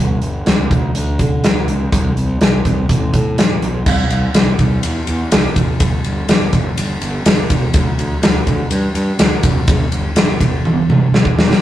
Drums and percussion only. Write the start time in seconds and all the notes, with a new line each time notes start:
0.22 closed hi-hat
0.46 snare, closed hi-hat
0.71 kick, closed hi-hat
0.95 closed hi-hat
1.19 kick, closed hi-hat
1.44 snare, closed hi-hat
1.68 closed hi-hat
1.92 kick, closed hi-hat
2.17 closed hi-hat
2.41 snare, closed hi-hat
2.65 kick, closed hi-hat
2.89 kick, closed hi-hat
3.14 kick, closed hi-hat
3.38 snare, closed hi-hat
3.62 closed hi-hat
3.86 kick, crash
4.10 ride
4.34 snare, ride
4.59 kick, ride
4.83 ride
5.07 ride
5.32 snare, ride
5.56 kick, ride
5.80 kick, ride
6.04 ride
6.29 snare, ride
6.53 kick, ride
6.77 ride
7.01 ride
7.26 snare, ride
7.50 kick, ride
7.74 kick, ride
7.99 ride
8.23 snare, ride
8.47 kick, ride
8.71 ride
8.95 ride
9.19 snare, ride
9.43 kick, ride
9.68 kick, ride
9.92 ride
10.16 snare, ride
10.41 kick, ride
10.65 high tom
10.90 mid tom
11.14 snare
11.25 kick
11.39 snare
11.51 snare